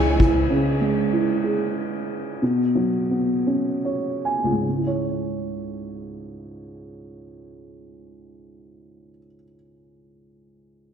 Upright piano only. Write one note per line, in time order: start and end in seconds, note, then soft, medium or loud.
0.00 0.46 C#3 medium
0.00 0.47 G#3 medium
0.00 0.19 E4 medium
0.00 0.49 G#4 medium
0.19 0.50 E4 medium
0.50 2.37 C#3 medium
0.81 2.04 G#3 soft
1.13 2.37 E4 soft
1.44 2.38 G#4 soft
2.42 4.61 B2 medium
2.75 4.20 F#3 soft
3.11 4.61 B3 soft
3.47 4.61 C#4 soft
3.85 4.21 C#5 soft
4.25 4.63 G#5 soft
4.44 9.10 C#2 soft
4.52 9.18 G#2 soft
4.61 9.27 C#3 soft
4.69 9.36 G#3 soft
4.78 9.44 E4 soft
4.87 9.53 C#5 soft